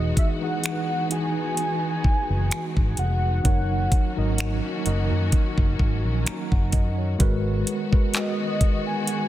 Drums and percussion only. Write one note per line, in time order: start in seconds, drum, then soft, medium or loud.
0.17 kick loud
0.17 closed hi-hat medium
0.64 finger snap loud
0.64 closed hi-hat medium
1.11 closed hi-hat medium
1.57 closed hi-hat medium
2.04 kick medium
2.51 finger snap loud
2.51 closed hi-hat medium
2.77 kick medium
2.97 closed hi-hat medium
3.45 kick loud
3.45 closed hi-hat medium
3.92 kick loud
3.92 closed hi-hat medium
4.38 finger snap loud
4.38 closed hi-hat medium
4.86 closed hi-hat medium
5.32 kick medium
5.32 closed hi-hat medium
5.58 kick medium
5.79 kick medium
6.26 finger snap loud
6.26 closed hi-hat medium
6.52 kick medium
6.72 kick medium
6.72 closed hi-hat medium
7.20 kick loud
7.20 closed hi-hat medium
7.67 closed hi-hat medium
7.93 kick loud
8.14 clap loud
8.14 closed hi-hat medium
8.61 kick loud
8.61 closed hi-hat medium
9.07 closed hi-hat medium